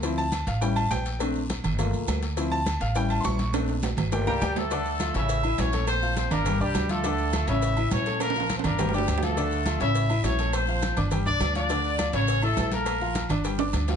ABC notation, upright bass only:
X:1
M:4/4
L:1/8
Q:1/4=206
K:Dm
V:1 name="Upright bass" clef=bass
D,,3 A,,,3 B,,,2- | B,,,3 G,,,2 C,, D,,2- | D,,3 A,,,3 B,,,2- | B,,,3 G,,,2 C,, D,,2- |
D,,3 A,,,3 B,,,2- | B,,,3 G,,,2 C,, D,,2- | D,,3 A,,,3 B,,,2- | B,,,3 G,,,3 D,,2- |
D,,3 A,,,3 B,,,2- | B,,,3 G,,,2 C,, D,,2- | D,,3 A,,,3 B,,,2- | B,,,3 G,,,3 D,,2 |]